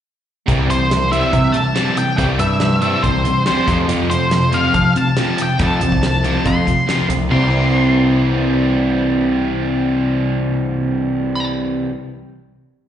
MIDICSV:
0, 0, Header, 1, 6, 480
1, 0, Start_track
1, 0, Key_signature, 0, "major"
1, 0, Tempo, 425532
1, 541, Time_signature, 4, 2, 24, 8
1, 14533, End_track
2, 0, Start_track
2, 0, Title_t, "Lead electric guitar"
2, 0, Program_c, 0, 29
2, 793, Note_on_c, 0, 72, 79
2, 1234, Note_off_c, 0, 72, 0
2, 1261, Note_on_c, 0, 76, 73
2, 1717, Note_on_c, 0, 81, 78
2, 1756, Note_off_c, 0, 76, 0
2, 2225, Note_off_c, 0, 81, 0
2, 2235, Note_on_c, 0, 79, 82
2, 2439, Note_off_c, 0, 79, 0
2, 2452, Note_on_c, 0, 79, 84
2, 2519, Note_off_c, 0, 79, 0
2, 2703, Note_on_c, 0, 76, 87
2, 3167, Note_off_c, 0, 76, 0
2, 3181, Note_on_c, 0, 76, 75
2, 3407, Note_off_c, 0, 76, 0
2, 3410, Note_on_c, 0, 72, 86
2, 3866, Note_off_c, 0, 72, 0
2, 3914, Note_on_c, 0, 72, 88
2, 4247, Note_off_c, 0, 72, 0
2, 4626, Note_on_c, 0, 72, 90
2, 5121, Note_on_c, 0, 77, 89
2, 5125, Note_off_c, 0, 72, 0
2, 5609, Note_on_c, 0, 81, 92
2, 5613, Note_off_c, 0, 77, 0
2, 6098, Note_off_c, 0, 81, 0
2, 6118, Note_on_c, 0, 79, 83
2, 6345, Note_off_c, 0, 79, 0
2, 6350, Note_on_c, 0, 81, 102
2, 6830, Note_off_c, 0, 81, 0
2, 6845, Note_on_c, 0, 81, 81
2, 7300, Note_on_c, 0, 84, 86
2, 7318, Note_off_c, 0, 81, 0
2, 7968, Note_off_c, 0, 84, 0
2, 8252, Note_on_c, 0, 84, 78
2, 12940, Note_off_c, 0, 84, 0
2, 14533, End_track
3, 0, Start_track
3, 0, Title_t, "Overdriven electric guitar"
3, 0, Program_c, 1, 29
3, 560, Note_on_c, 1, 60, 87
3, 776, Note_off_c, 1, 60, 0
3, 788, Note_on_c, 1, 55, 65
3, 1001, Note_off_c, 1, 55, 0
3, 1036, Note_on_c, 1, 55, 69
3, 1245, Note_off_c, 1, 55, 0
3, 1272, Note_on_c, 1, 60, 93
3, 1493, Note_off_c, 1, 60, 0
3, 1501, Note_on_c, 1, 55, 76
3, 1718, Note_off_c, 1, 55, 0
3, 1747, Note_on_c, 1, 55, 76
3, 1961, Note_off_c, 1, 55, 0
3, 1988, Note_on_c, 1, 60, 99
3, 2211, Note_off_c, 1, 60, 0
3, 2224, Note_on_c, 1, 55, 69
3, 2440, Note_off_c, 1, 55, 0
3, 2465, Note_on_c, 1, 60, 84
3, 2690, Note_off_c, 1, 60, 0
3, 2704, Note_on_c, 1, 55, 62
3, 2921, Note_off_c, 1, 55, 0
3, 2951, Note_on_c, 1, 55, 72
3, 3164, Note_off_c, 1, 55, 0
3, 3195, Note_on_c, 1, 60, 93
3, 3416, Note_off_c, 1, 60, 0
3, 3444, Note_on_c, 1, 55, 71
3, 3652, Note_off_c, 1, 55, 0
3, 3685, Note_on_c, 1, 55, 70
3, 3893, Note_off_c, 1, 55, 0
3, 3941, Note_on_c, 1, 60, 89
3, 4151, Note_off_c, 1, 60, 0
3, 14533, End_track
4, 0, Start_track
4, 0, Title_t, "Distorted electric guitar"
4, 0, Program_c, 2, 30
4, 520, Note_on_c, 2, 48, 86
4, 534, Note_on_c, 2, 52, 95
4, 537, Note_on_c, 2, 55, 92
4, 756, Note_off_c, 2, 48, 0
4, 758, Note_off_c, 2, 52, 0
4, 765, Note_off_c, 2, 55, 0
4, 769, Note_on_c, 2, 48, 68
4, 772, Note_on_c, 2, 52, 67
4, 991, Note_off_c, 2, 48, 0
4, 993, Note_off_c, 2, 52, 0
4, 1013, Note_on_c, 2, 48, 65
4, 1017, Note_on_c, 2, 52, 78
4, 1233, Note_off_c, 2, 48, 0
4, 1235, Note_off_c, 2, 52, 0
4, 1254, Note_on_c, 2, 48, 77
4, 1260, Note_on_c, 2, 52, 80
4, 1266, Note_on_c, 2, 55, 78
4, 1475, Note_off_c, 2, 48, 0
4, 1477, Note_off_c, 2, 52, 0
4, 1489, Note_off_c, 2, 55, 0
4, 1489, Note_on_c, 2, 48, 68
4, 1491, Note_on_c, 2, 52, 79
4, 1711, Note_off_c, 2, 48, 0
4, 1712, Note_off_c, 2, 52, 0
4, 1724, Note_on_c, 2, 48, 59
4, 1730, Note_on_c, 2, 52, 63
4, 1949, Note_off_c, 2, 48, 0
4, 1952, Note_off_c, 2, 52, 0
4, 1965, Note_on_c, 2, 48, 84
4, 1974, Note_on_c, 2, 52, 90
4, 1982, Note_on_c, 2, 55, 81
4, 2200, Note_off_c, 2, 48, 0
4, 2204, Note_off_c, 2, 52, 0
4, 2208, Note_off_c, 2, 55, 0
4, 2218, Note_on_c, 2, 48, 62
4, 2220, Note_on_c, 2, 52, 67
4, 2437, Note_off_c, 2, 48, 0
4, 2438, Note_off_c, 2, 52, 0
4, 2453, Note_on_c, 2, 48, 94
4, 2461, Note_on_c, 2, 52, 96
4, 2469, Note_on_c, 2, 55, 93
4, 2679, Note_off_c, 2, 48, 0
4, 2684, Note_off_c, 2, 52, 0
4, 2692, Note_off_c, 2, 55, 0
4, 2693, Note_on_c, 2, 48, 66
4, 2698, Note_on_c, 2, 52, 64
4, 2915, Note_off_c, 2, 48, 0
4, 2917, Note_off_c, 2, 52, 0
4, 2932, Note_on_c, 2, 48, 68
4, 2934, Note_on_c, 2, 52, 77
4, 3155, Note_off_c, 2, 48, 0
4, 3156, Note_off_c, 2, 52, 0
4, 3169, Note_on_c, 2, 48, 70
4, 3176, Note_on_c, 2, 52, 75
4, 3184, Note_on_c, 2, 55, 78
4, 3403, Note_off_c, 2, 48, 0
4, 3407, Note_off_c, 2, 52, 0
4, 3411, Note_off_c, 2, 55, 0
4, 3422, Note_on_c, 2, 48, 71
4, 3425, Note_on_c, 2, 52, 89
4, 3641, Note_off_c, 2, 48, 0
4, 3642, Note_off_c, 2, 52, 0
4, 3656, Note_on_c, 2, 48, 69
4, 3663, Note_on_c, 2, 52, 70
4, 3879, Note_off_c, 2, 48, 0
4, 3882, Note_off_c, 2, 52, 0
4, 3897, Note_on_c, 2, 48, 77
4, 3905, Note_on_c, 2, 52, 78
4, 3912, Note_on_c, 2, 55, 81
4, 4129, Note_off_c, 2, 48, 0
4, 4131, Note_on_c, 2, 41, 84
4, 4133, Note_off_c, 2, 52, 0
4, 4136, Note_off_c, 2, 55, 0
4, 4141, Note_on_c, 2, 48, 87
4, 4145, Note_on_c, 2, 53, 86
4, 4356, Note_off_c, 2, 41, 0
4, 4367, Note_off_c, 2, 48, 0
4, 4369, Note_on_c, 2, 41, 89
4, 4373, Note_off_c, 2, 53, 0
4, 4380, Note_on_c, 2, 48, 96
4, 4389, Note_on_c, 2, 53, 100
4, 4603, Note_off_c, 2, 41, 0
4, 4609, Note_off_c, 2, 48, 0
4, 4616, Note_off_c, 2, 53, 0
4, 4617, Note_on_c, 2, 41, 65
4, 4622, Note_on_c, 2, 48, 75
4, 4835, Note_off_c, 2, 41, 0
4, 4840, Note_off_c, 2, 48, 0
4, 4848, Note_on_c, 2, 41, 73
4, 4853, Note_on_c, 2, 48, 87
4, 5077, Note_off_c, 2, 41, 0
4, 5080, Note_off_c, 2, 48, 0
4, 5090, Note_on_c, 2, 41, 73
4, 5099, Note_on_c, 2, 48, 78
4, 5106, Note_on_c, 2, 53, 81
4, 5326, Note_off_c, 2, 41, 0
4, 5333, Note_off_c, 2, 48, 0
4, 5336, Note_off_c, 2, 53, 0
4, 5339, Note_on_c, 2, 41, 71
4, 5344, Note_on_c, 2, 48, 73
4, 5564, Note_off_c, 2, 41, 0
4, 5566, Note_off_c, 2, 48, 0
4, 5586, Note_on_c, 2, 41, 72
4, 5589, Note_on_c, 2, 48, 66
4, 5808, Note_off_c, 2, 41, 0
4, 5809, Note_off_c, 2, 48, 0
4, 5820, Note_on_c, 2, 41, 80
4, 5830, Note_on_c, 2, 48, 83
4, 5836, Note_on_c, 2, 53, 85
4, 6047, Note_off_c, 2, 41, 0
4, 6050, Note_off_c, 2, 48, 0
4, 6060, Note_on_c, 2, 41, 71
4, 6063, Note_off_c, 2, 53, 0
4, 6064, Note_on_c, 2, 48, 73
4, 6279, Note_off_c, 2, 41, 0
4, 6284, Note_off_c, 2, 48, 0
4, 6293, Note_on_c, 2, 41, 89
4, 6297, Note_on_c, 2, 48, 103
4, 6303, Note_on_c, 2, 53, 105
4, 6530, Note_off_c, 2, 41, 0
4, 6535, Note_off_c, 2, 48, 0
4, 6537, Note_off_c, 2, 53, 0
4, 6544, Note_on_c, 2, 41, 72
4, 6552, Note_on_c, 2, 48, 71
4, 6768, Note_off_c, 2, 41, 0
4, 6773, Note_off_c, 2, 48, 0
4, 6785, Note_on_c, 2, 41, 73
4, 6790, Note_on_c, 2, 48, 81
4, 7010, Note_off_c, 2, 41, 0
4, 7012, Note_off_c, 2, 48, 0
4, 7027, Note_on_c, 2, 41, 74
4, 7037, Note_on_c, 2, 48, 71
4, 7043, Note_on_c, 2, 53, 74
4, 7258, Note_off_c, 2, 41, 0
4, 7263, Note_off_c, 2, 48, 0
4, 7269, Note_off_c, 2, 53, 0
4, 7272, Note_on_c, 2, 41, 69
4, 7277, Note_on_c, 2, 48, 79
4, 7494, Note_off_c, 2, 41, 0
4, 7496, Note_off_c, 2, 48, 0
4, 7508, Note_on_c, 2, 41, 60
4, 7509, Note_on_c, 2, 48, 72
4, 7732, Note_off_c, 2, 41, 0
4, 7733, Note_off_c, 2, 48, 0
4, 7744, Note_on_c, 2, 41, 71
4, 7753, Note_on_c, 2, 48, 76
4, 7763, Note_on_c, 2, 53, 91
4, 7976, Note_off_c, 2, 41, 0
4, 7982, Note_off_c, 2, 48, 0
4, 7989, Note_off_c, 2, 53, 0
4, 7989, Note_on_c, 2, 41, 73
4, 7995, Note_on_c, 2, 48, 73
4, 8207, Note_off_c, 2, 48, 0
4, 8213, Note_off_c, 2, 41, 0
4, 8220, Note_on_c, 2, 48, 90
4, 8235, Note_on_c, 2, 52, 94
4, 8247, Note_on_c, 2, 55, 96
4, 8260, Note_on_c, 2, 60, 104
4, 8270, Note_on_c, 2, 67, 104
4, 13403, Note_off_c, 2, 48, 0
4, 13418, Note_off_c, 2, 52, 0
4, 13430, Note_off_c, 2, 55, 0
4, 13443, Note_off_c, 2, 60, 0
4, 13454, Note_off_c, 2, 67, 0
4, 14533, End_track
5, 0, Start_track
5, 0, Title_t, "Picked electric bass"
5, 0, Program_c, 3, 34
5, 543, Note_on_c, 3, 36, 86
5, 1369, Note_off_c, 3, 36, 0
5, 1505, Note_on_c, 3, 48, 89
5, 1710, Note_off_c, 3, 48, 0
5, 2468, Note_on_c, 3, 36, 97
5, 2673, Note_off_c, 3, 36, 0
5, 2700, Note_on_c, 3, 43, 83
5, 3323, Note_off_c, 3, 43, 0
5, 3428, Note_on_c, 3, 36, 98
5, 3635, Note_off_c, 3, 36, 0
5, 4150, Note_on_c, 3, 41, 80
5, 4357, Note_off_c, 3, 41, 0
5, 4378, Note_on_c, 3, 41, 91
5, 5214, Note_off_c, 3, 41, 0
5, 5347, Note_on_c, 3, 53, 84
5, 5558, Note_off_c, 3, 53, 0
5, 6313, Note_on_c, 3, 41, 96
5, 6523, Note_off_c, 3, 41, 0
5, 6550, Note_on_c, 3, 36, 84
5, 7176, Note_off_c, 3, 36, 0
5, 7278, Note_on_c, 3, 41, 97
5, 7487, Note_off_c, 3, 41, 0
5, 7995, Note_on_c, 3, 36, 84
5, 8206, Note_off_c, 3, 36, 0
5, 8244, Note_on_c, 3, 36, 92
5, 13382, Note_off_c, 3, 36, 0
5, 14533, End_track
6, 0, Start_track
6, 0, Title_t, "Drums"
6, 543, Note_on_c, 9, 36, 103
6, 549, Note_on_c, 9, 42, 76
6, 656, Note_off_c, 9, 36, 0
6, 661, Note_off_c, 9, 42, 0
6, 794, Note_on_c, 9, 42, 57
6, 907, Note_off_c, 9, 42, 0
6, 1030, Note_on_c, 9, 38, 102
6, 1030, Note_on_c, 9, 42, 78
6, 1143, Note_off_c, 9, 38, 0
6, 1143, Note_off_c, 9, 42, 0
6, 1271, Note_on_c, 9, 42, 55
6, 1384, Note_off_c, 9, 42, 0
6, 1502, Note_on_c, 9, 36, 90
6, 1506, Note_on_c, 9, 42, 73
6, 1615, Note_off_c, 9, 36, 0
6, 1618, Note_off_c, 9, 42, 0
6, 1737, Note_on_c, 9, 42, 54
6, 1850, Note_off_c, 9, 42, 0
6, 1982, Note_on_c, 9, 38, 91
6, 1982, Note_on_c, 9, 42, 69
6, 2094, Note_off_c, 9, 38, 0
6, 2094, Note_off_c, 9, 42, 0
6, 2223, Note_on_c, 9, 42, 67
6, 2335, Note_off_c, 9, 42, 0
6, 2463, Note_on_c, 9, 36, 102
6, 2464, Note_on_c, 9, 42, 84
6, 2576, Note_off_c, 9, 36, 0
6, 2577, Note_off_c, 9, 42, 0
6, 2699, Note_on_c, 9, 42, 58
6, 2812, Note_off_c, 9, 42, 0
6, 2934, Note_on_c, 9, 38, 95
6, 2934, Note_on_c, 9, 42, 67
6, 3047, Note_off_c, 9, 38, 0
6, 3047, Note_off_c, 9, 42, 0
6, 3178, Note_on_c, 9, 42, 52
6, 3291, Note_off_c, 9, 42, 0
6, 3426, Note_on_c, 9, 36, 97
6, 3427, Note_on_c, 9, 42, 65
6, 3539, Note_off_c, 9, 36, 0
6, 3540, Note_off_c, 9, 42, 0
6, 3668, Note_on_c, 9, 42, 49
6, 3780, Note_off_c, 9, 42, 0
6, 3901, Note_on_c, 9, 38, 100
6, 3901, Note_on_c, 9, 42, 61
6, 4014, Note_off_c, 9, 38, 0
6, 4014, Note_off_c, 9, 42, 0
6, 4148, Note_on_c, 9, 36, 105
6, 4152, Note_on_c, 9, 42, 59
6, 4261, Note_off_c, 9, 36, 0
6, 4265, Note_off_c, 9, 42, 0
6, 4388, Note_on_c, 9, 42, 83
6, 4501, Note_off_c, 9, 42, 0
6, 4638, Note_on_c, 9, 42, 56
6, 4750, Note_off_c, 9, 42, 0
6, 4866, Note_on_c, 9, 38, 99
6, 4866, Note_on_c, 9, 42, 74
6, 4979, Note_off_c, 9, 38, 0
6, 4979, Note_off_c, 9, 42, 0
6, 5104, Note_on_c, 9, 42, 53
6, 5217, Note_off_c, 9, 42, 0
6, 5349, Note_on_c, 9, 42, 74
6, 5352, Note_on_c, 9, 36, 93
6, 5462, Note_off_c, 9, 42, 0
6, 5465, Note_off_c, 9, 36, 0
6, 5594, Note_on_c, 9, 42, 51
6, 5707, Note_off_c, 9, 42, 0
6, 5828, Note_on_c, 9, 38, 98
6, 5828, Note_on_c, 9, 42, 68
6, 5940, Note_off_c, 9, 38, 0
6, 5940, Note_off_c, 9, 42, 0
6, 6071, Note_on_c, 9, 42, 69
6, 6184, Note_off_c, 9, 42, 0
6, 6310, Note_on_c, 9, 42, 85
6, 6314, Note_on_c, 9, 36, 115
6, 6423, Note_off_c, 9, 42, 0
6, 6427, Note_off_c, 9, 36, 0
6, 6554, Note_on_c, 9, 42, 66
6, 6667, Note_off_c, 9, 42, 0
6, 6680, Note_on_c, 9, 36, 75
6, 6793, Note_off_c, 9, 36, 0
6, 6802, Note_on_c, 9, 38, 102
6, 6802, Note_on_c, 9, 42, 77
6, 6915, Note_off_c, 9, 38, 0
6, 6915, Note_off_c, 9, 42, 0
6, 7043, Note_on_c, 9, 42, 47
6, 7156, Note_off_c, 9, 42, 0
6, 7283, Note_on_c, 9, 36, 102
6, 7283, Note_on_c, 9, 42, 77
6, 7396, Note_off_c, 9, 36, 0
6, 7396, Note_off_c, 9, 42, 0
6, 7525, Note_on_c, 9, 36, 69
6, 7531, Note_on_c, 9, 42, 53
6, 7638, Note_off_c, 9, 36, 0
6, 7644, Note_off_c, 9, 42, 0
6, 7769, Note_on_c, 9, 38, 97
6, 7769, Note_on_c, 9, 42, 70
6, 7882, Note_off_c, 9, 38, 0
6, 7882, Note_off_c, 9, 42, 0
6, 8008, Note_on_c, 9, 42, 62
6, 8121, Note_off_c, 9, 42, 0
6, 14533, End_track
0, 0, End_of_file